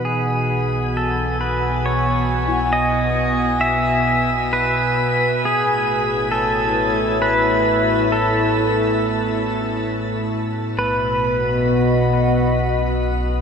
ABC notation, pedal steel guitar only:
X:1
M:3/4
L:1/8
Q:1/4=67
K:Bmix
V:1 name="Pedal steel guitar"
G2 A B c2 | d2 e2 B2 | G2 A2 B2 | A4 z2 |
B6 |]